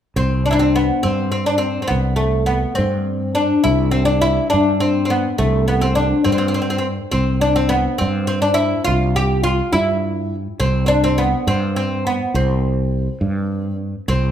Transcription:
0.16 0.90 C2 medium
0.16 0.45 C4 medium
0.46 0.50 D4 medium
0.51 0.61 D4 medium
0.51 0.54 E4 medium
0.59 0.75 C4 medium
0.76 1.06 B3 medium
1.03 1.78 G2 medium
1.03 1.30 C4 medium
1.32 1.46 C4 medium
1.46 1.57 D4 medium
1.58 1.81 C4 medium
1.82 1.91 C4 soft
1.88 2.64 C2 medium
1.88 2.16 B3 medium
2.16 2.46 A3 medium
2.46 2.75 B3 medium
2.75 3.52 G2 medium
2.75 3.37 C4 medium
3.35 3.63 D4 medium
3.64 4.38 C2 medium
3.64 3.91 E4 medium
3.91 4.05 C4 medium
4.05 4.21 D4 medium
4.21 4.49 E4 medium
4.50 5.26 G2 medium
4.50 4.80 D4 medium
4.80 5.02 C4 medium
5.05 5.12 C4 medium
5.10 5.38 B3 medium
5.38 6.12 C2 medium
5.38 5.67 A3 medium
5.68 5.83 B3 medium
5.81 5.95 C4 medium
5.95 6.23 D4 medium
6.24 6.99 G2 medium
6.24 6.31 C4 medium
6.32 6.37 C4 medium
6.38 6.47 C4 medium
6.48 6.53 C4 medium
6.54 6.61 C4 medium
6.62 6.69 C4 medium
6.70 6.77 C4 medium
6.78 6.86 C4 medium
7.12 7.86 C2 medium
7.12 7.41 C4 medium
7.41 7.55 D4 medium
7.56 7.71 C4 medium
7.69 7.97 B3 medium
7.98 8.74 G2 medium
7.98 8.26 C4 medium
8.27 8.41 C4 medium
8.42 8.54 D4 medium
8.54 8.84 E4 medium
8.84 9.60 C2 medium
8.84 9.16 F4 medium
9.16 9.43 G4 medium
9.44 9.72 F4 medium
9.73 10.47 G2 medium
9.73 10.35 E4 medium
10.60 11.33 C2 medium
10.60 10.85 C4 medium
10.86 10.90 C4 medium
10.86 11.04 D4 medium
11.04 11.19 C4 medium
11.18 11.48 B3 medium
11.47 12.20 G2 medium
11.47 11.75 C4 medium
11.76 12.07 C4 medium
12.07 12.35 B3 medium
12.34 13.07 C2 medium
12.34 13.76 C4 medium
13.21 13.94 G2 medium
14.08 14.31 C2 medium
14.08 14.31 C4 medium

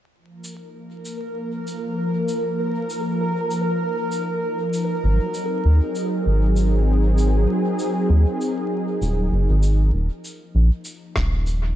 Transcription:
0.13 5.04 F3 medium
0.13 9.95 A#4 medium
0.21 6.24 A#3 medium
0.44 11.76 D#4 medium
0.44 shaker medium
1.05 shaker medium
1.37 7.01 A#4 medium
1.67 shaker medium
2.29 shaker medium
2.90 shaker medium
3.51 shaker medium
4.12 shaker medium
4.73 shaker medium
5.04 5.19 G#1 medium
5.04 9.94 F#3 medium
5.23 11.37 C4 medium
5.34 shaker medium
5.65 5.80 D#2 medium
5.65 11.73 G#4 medium
5.95 shaker medium
6.26 7.46 G#1 medium
6.56 shaker medium
7.18 shaker medium
7.79 shaker medium
8.10 8.25 D#2 medium
8.41 shaker medium
9.02 9.29 D#1 loud
9.02 shaker medium
9.32 9.48 F#1 medium
9.49 9.91 G#1 medium
9.63 shaker medium
9.93 10.09 D#1 medium
9.93 11.76 F3 medium
10.24 11.76 A#3 medium
10.24 shaker medium
10.55 10.70 A#1 medium
10.78 11.76 A#4 medium
10.85 shaker medium
11.16 11.76 D#1 medium
11.16 kick medium
11.16 cross-stick medium
11.47 shaker medium

